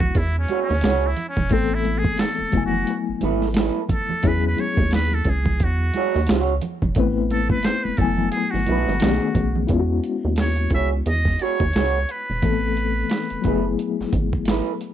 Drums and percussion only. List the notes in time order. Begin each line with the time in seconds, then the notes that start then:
0.00 kick, low conga
0.15 kick, closed hi-hat, muted conga
0.48 closed hi-hat, high conga
0.69 snare
0.81 snare, closed hi-hat, muted conga, high conga
1.17 closed hi-hat, low conga
1.37 kick, low conga
1.50 kick, closed hi-hat
1.84 closed hi-hat, high conga
2.04 kick, high conga
2.18 snare, closed hi-hat, muted conga
2.38 high conga
2.52 kick, closed hi-hat
2.72 low conga
2.87 closed hi-hat, muted conga
3.21 closed hi-hat, muted conga, high conga
3.42 snare
3.54 snare, closed hi-hat, high conga
3.89 kick, closed hi-hat, low conga
4.09 low conga
4.23 kick, closed hi-hat, muted conga
4.57 closed hi-hat, high conga
4.77 kick, high conga
4.91 snare, closed hi-hat
5.11 high conga
5.25 kick, closed hi-hat, muted conga
5.45 kick, low conga
5.60 kick, closed hi-hat
5.93 closed hi-hat, muted conga, high conga
6.14 snare
6.27 snare, closed hi-hat, high conga
6.61 closed hi-hat, muted conga, low conga
6.82 kick, low conga
6.95 kick, closed hi-hat
7.30 closed hi-hat, high conga
7.50 kick, high conga
7.63 snare, closed hi-hat, muted conga
7.85 high conga
7.97 kick, closed hi-hat, muted conga
8.18 low conga
8.32 closed hi-hat, muted conga
8.54 snare
8.67 closed hi-hat, muted conga, high conga
8.88 snare
9.00 snare, closed hi-hat, muted conga, high conga
9.34 kick, closed hi-hat, low conga
9.55 low conga
9.68 kick, closed hi-hat
10.04 closed hi-hat
10.36 snare, closed hi-hat
10.56 closed hi-hat
10.70 kick, closed hi-hat
11.06 closed hi-hat
11.25 kick, snare
11.39 closed hi-hat
11.60 kick
11.73 snare, closed hi-hat
12.09 closed hi-hat
12.42 kick, closed hi-hat
12.77 closed hi-hat
13.10 snare, closed hi-hat
13.30 closed hi-hat
13.44 kick, closed hi-hat
13.79 closed hi-hat
14.01 snare
14.13 kick, closed hi-hat
14.33 kick
14.45 snare, closed hi-hat
14.81 closed hi-hat